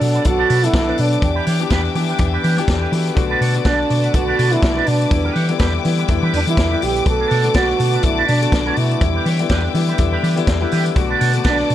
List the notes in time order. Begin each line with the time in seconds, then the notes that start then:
Already playing: B3 D4 A4 B4 F#5 A5 D6
0.00 B2 F#3 B3 D4 A4, muted clean electric guitar stroke, open hi-hat
0.14 D4 A4 B4, closed hi-hat
0.25 B1 F#3 B3 D4 F#4 A4, muted clean electric guitar stroke, kick, closed hi-hat
0.38 D4 A4 B4
0.49 B2 D4 A4 B4, open hi-hat
0.63 F#3 B3 D4 E4 A4, muted clean electric guitar stroke, closed hi-hat
0.74 B1, muted clean electric guitar stroke, kick, snare, closed hi-hat
0.87 F#3 B3 D4 A4 B4
0.97 B2 D4, muted clean electric guitar stroke, open hi-hat
1.12 muted clean electric guitar stroke, closed hi-hat
1.22 E2 E3 B3 D4 G4 E5 G5, kick, closed hi-hat
1.35 D4 G4 B4
1.46 E3 D4 G4 C#5, open hi-hat
1.59 E3 B3 D4 G4, muted clean electric guitar stroke, closed hi-hat
1.70 E2 D4 G4 B4, kick, snare, closed hi-hat
1.84 muted clean electric guitar stroke
1.94 E3 B3 D4 G4, muted clean electric guitar stroke, open hi-hat
2.09 D4 G4 B4, closed hi-hat
2.18 E2 E3 B3 D4 G4, kick, closed hi-hat
2.33 D4 G4 B4
2.43 E3 D4 G4 B4, open hi-hat
2.57 E3 B3 D4 G4, closed hi-hat
2.68 E2 A4 D5, kick, snare, closed hi-hat
2.81 D4 G4 B4
2.92 E3 F#4 B4, muted clean electric guitar stroke, open hi-hat
3.06 muted clean electric guitar stroke, closed hi-hat
3.15 B1 D3 A3 B3 F#4 F#5 A5 D6, muted clean electric guitar stroke, kick, closed hi-hat
3.30 D4 A4 B4
3.41 B2 D4 A4 C#5, open hi-hat
3.54 D3 A3 B3 F#4, muted clean electric guitar stroke, closed hi-hat
3.65 B1 D4 A4 B4, kick, snare, closed hi-hat
3.79 muted clean electric guitar stroke
3.89 B2 D3 A3 B3 F#4, muted clean electric guitar stroke, open hi-hat
4.03 D4 A4 B4, closed hi-hat
4.14 B1 D3 A3 B3 F#4, kick, closed hi-hat
4.27 D4 A4 B4
4.38 B2 D4 A4 B4, open hi-hat
4.51 D3 A3 B3 E4 F#4, muted clean electric guitar stroke, closed hi-hat
4.63 B1, muted clean electric guitar stroke, kick, snare, closed hi-hat
4.75 D3 A3 B3 D4 F#4 A4 B4
4.86 B2 D4, muted clean electric guitar stroke, open hi-hat
5.00 muted clean electric guitar stroke, closed hi-hat
5.10 E2 D3 G3 B3 E4 E5 G5, muted clean electric guitar stroke, kick, closed hi-hat
5.24 D4 G4 B4
5.35 E3 D4 G4 C#5, open hi-hat
5.48 D3 G3 B3 E4, muted clean electric guitar stroke, closed hi-hat
5.59 E2 D4 G4 B4, kick, snare, closed hi-hat
5.73 muted clean electric guitar stroke
5.84 D3 E3 G3 B3 E4, muted clean electric guitar stroke, open hi-hat
5.98 D4 G4 B4, closed hi-hat
6.08 E2 D3 G3 B3 E4, kick, closed hi-hat
6.23 E3 D4 G4 B4
6.33 E2 D4 G4 B4, open hi-hat
6.46 D3 E3 G3 B3 E4, muted clean electric guitar stroke, closed hi-hat
6.57 E2, muted clean electric guitar stroke, kick, snare, closed hi-hat
6.70 D3 G3 B3 D4 E4 G4 B4
6.82 A#1 G4, muted clean electric guitar stroke, open hi-hat
6.96 muted clean electric guitar stroke, closed hi-hat
7.05 B1 D3 A3 B3 F#4 A4 F#5 A5, muted clean electric guitar stroke, kick, closed hi-hat
7.19 D4 A4 B4
7.30 B2 D4 A4 C#5, open hi-hat
7.43 D3 A3 B3 F#4, muted clean electric guitar stroke, closed hi-hat
7.54 B1 D4 F#4 A4 B4, kick, snare, closed hi-hat
7.68 muted clean electric guitar stroke, snare
7.79 B2 D3 A3 B3 F#4, muted clean electric guitar stroke, open hi-hat
7.93 D4 A4 B4, closed hi-hat
8.03 B1 D3 A3 B3 E4 F#4, kick, closed hi-hat
8.17 D4 A4 B4
8.28 B2 D4 A4 B4, open hi-hat
8.40 D3 A3 B3 F#4, muted clean electric guitar stroke, closed hi-hat
8.52 B1, kick, snare, closed hi-hat
8.65 D3 A3 B3 D4 F#4 A4 B4
8.76 B2 E4, muted clean electric guitar stroke, open hi-hat
8.91 muted clean electric guitar stroke, closed hi-hat
9.01 E2 D3 G3 B3 E4 E5 G5, muted clean electric guitar stroke, kick, closed hi-hat
9.15 D4 G4 B4
9.26 E3 D4 G4 C#5, open hi-hat
9.39 D3 G3 B3 E4, muted clean electric guitar stroke, closed hi-hat
9.49 E2 D4 G4 B4, kick, snare, closed hi-hat
9.64 muted clean electric guitar stroke
9.73 D3 E3 G3 B3 E4, muted clean electric guitar stroke, open hi-hat
9.88 D4 G4 B4, closed hi-hat
9.98 E2 D3 G3 B3 E4, kick, closed hi-hat
10.12 D4 G4 B4
10.23 E3 D4 G4 B4, open hi-hat
10.36 D3 G3 B3 E4, muted clean electric guitar stroke, closed hi-hat
10.47 E2, muted clean electric guitar stroke, kick, snare, closed hi-hat
10.61 D3 G3 B3 D4 E4 G4 B4
10.71 E3 D4 G4 B4, open hi-hat
10.85 muted clean electric guitar stroke, closed hi-hat
10.95 B1 D3 A3 B3 F#4 B4 F#5 A5 D6, muted clean electric guitar stroke, kick, closed hi-hat
11.09 D4 A4 B4
11.20 B2 D4 A4 C#5, open hi-hat
11.33 D3 A3 B3 F#4, muted clean electric guitar stroke, closed hi-hat
11.44 B1 D4 A4 B4, kick, snare, closed hi-hat
11.48 D4
11.58 muted clean electric guitar stroke, snare
11.69 B2 D3 A3 B3 F#4, muted clean electric guitar stroke, open hi-hat